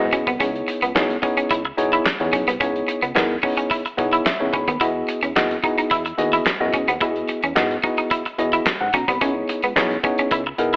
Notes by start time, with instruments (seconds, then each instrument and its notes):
0.00 analog synth bass G#2, tine electric piano B3 E4 F#4 G#4 D#5
0.12 analog synth bass B1, clean electric guitar C#4, kick, closed hi-hat
0.27 analog synth bass C2, clean electric guitar B3, kick, closed hi-hat
0.39 analog synth bass C#2, tine electric piano B3 D#4 E4 G#4 C#5, clean electric guitar C#4, kick, closed hi-hat
0.55 closed hi-hat
0.68 muted clean electric guitar stroke, closed hi-hat
0.82 analog synth bass C#2, clean electric guitar B3, closed hi-hat
0.95 analog synth bass B1, tine electric piano B3 D#4 E4 G#4 C#5, muted clean electric guitar stroke, snare, clap
1.10 closed hi-hat
1.22 tine electric piano B3 D#4 E4 G#4 C#5, clean electric guitar C#4, kick, closed hi-hat
1.37 clean electric guitar C#4, closed hi-hat
1.51 analog synth bass C#2, clean electric guitar E4, kick, closed hi-hat
1.65 muted clean electric guitar stroke
1.77 analog synth bass B1, tine electric piano B3 D#4 E4 G#4 C#5, closed hi-hat
1.93 clean electric guitar E4, closed hi-hat
2.06 muted clean electric guitar stroke, snare, clap
2.20 analog synth bass E2, tine electric piano B3 D#4 E4 G#4 C#5, closed hi-hat
2.33 analog synth bass B1, clean electric guitar C#4, kick, closed hi-hat
2.48 analog synth bass C2, clean electric guitar B3, closed hi-hat
2.60 analog synth bass C#2, tine electric piano B3 D#4 E4 G#4 C#5, clean electric guitar C#4, kick, closed hi-hat
2.76 closed hi-hat
2.88 muted clean electric guitar stroke, closed hi-hat
3.02 analog synth bass C#2, clean electric guitar B3, closed hi-hat
3.15 analog synth bass E2, tine electric piano B3 D#4 E4 G#4 A#4, muted clean electric guitar stroke, snare, clap
3.43 tine electric piano B3 D#4 E4 G#4 C#5, clean electric guitar C#4, kick, open hi-hat
3.57 clean electric guitar C#4, closed hi-hat
3.71 clean electric guitar E4, kick, closed hi-hat
3.85 muted clean electric guitar stroke, closed hi-hat
3.98 analog synth bass B1, tine electric piano B3 D#4 E4 G#4 C#5, kick, closed hi-hat
4.13 clean electric guitar E4, closed hi-hat
4.26 tine electric piano E5, muted clean electric guitar stroke, snare, clap
4.40 analog synth bass C#2, tine electric piano B3 D#4 E4 G#4 C#5
4.53 analog synth bass D2, clean electric guitar C#4, tine electric piano B5, kick, closed hi-hat
4.68 analog synth bass D#2, clean electric guitar B3, kick, closed hi-hat
4.81 analog synth bass E2, tine electric piano B3 E4 F#4 G#4 D#5, clean electric guitar E4, kick, closed hi-hat
5.08 muted clean electric guitar stroke, closed hi-hat
5.23 analog synth bass E2, clean electric guitar C#4, closed hi-hat
5.36 analog synth bass D#2, tine electric piano B3 E4 F#4 G#4 D#5, muted clean electric guitar stroke, snare, clap
5.51 closed hi-hat
5.63 tine electric piano B3 E4 F#4 G#4 D#5, clean electric guitar D#4, kick, closed hi-hat
5.78 clean electric guitar D#4, closed hi-hat
5.91 analog synth bass E2, clean electric guitar E4, kick, closed hi-hat
6.06 muted clean electric guitar stroke, closed hi-hat
6.18 analog synth bass D#2, tine electric piano B3 E4 F#4 G#4 D#5, closed hi-hat
6.33 clean electric guitar E4, closed hi-hat
6.46 muted clean electric guitar stroke, snare, clap
6.60 analog synth bass F#2, tine electric piano B3 E4 F#4 G#4 D#5
6.73 analog synth bass D2, clean electric guitar C#4, kick, closed hi-hat
6.88 analog synth bass D#2, clean electric guitar B3, closed hi-hat
7.00 analog synth bass E2, tine electric piano B3 E4 F#4 G#4 D#5, clean electric guitar E4, kick, closed hi-hat
7.16 closed hi-hat
7.28 muted clean electric guitar stroke, closed hi-hat
7.43 analog synth bass E2, clean electric guitar C#4, closed hi-hat
7.55 analog synth bass G#2, tine electric piano B3 E4 F#4 G#4 D#5, muted clean electric guitar stroke, snare, clap
7.71 closed hi-hat
7.83 tine electric piano B3 E4 F#4 G#4 D#5, clean electric guitar D#4, kick, closed hi-hat
7.98 clean electric guitar D#4, closed hi-hat
8.11 clean electric guitar E4, kick, closed hi-hat
8.25 muted clean electric guitar stroke, closed hi-hat
8.38 analog synth bass E2, tine electric piano B3 E4 F#4 G#4 D#5, closed hi-hat
8.53 clean electric guitar E4, closed hi-hat
8.66 muted clean electric guitar stroke, snare, clap
8.81 analog synth bass G#2, tine electric piano F#5
8.93 analog synth bass B1, clean electric guitar C#4, tine electric piano A#5, kick, closed hi-hat
9.08 analog synth bass C2, clean electric guitar B3, tine electric piano B5, kick, closed hi-hat
9.21 analog synth bass C#2, tine electric piano B3 D#4 E4 G#4 C#5, clean electric guitar C#4, kick, closed hi-hat
9.49 muted clean electric guitar stroke, closed hi-hat
9.63 analog synth bass C#2, clean electric guitar B3, closed hi-hat
9.76 analog synth bass B1, tine electric piano B3 D#4 E4 G#4 C#5, muted clean electric guitar stroke, snare, clap
9.91 closed hi-hat
10.03 tine electric piano B3 D#4 E4 G#4 C#5, clean electric guitar C#4, kick, closed hi-hat
10.18 clean electric guitar C#4, closed hi-hat
10.31 analog synth bass C#2, clean electric guitar E4, kick, closed hi-hat
10.47 muted clean electric guitar stroke
10.58 analog synth bass B1, tine electric piano B3 D#4 E4 G#4 A#4, closed hi-hat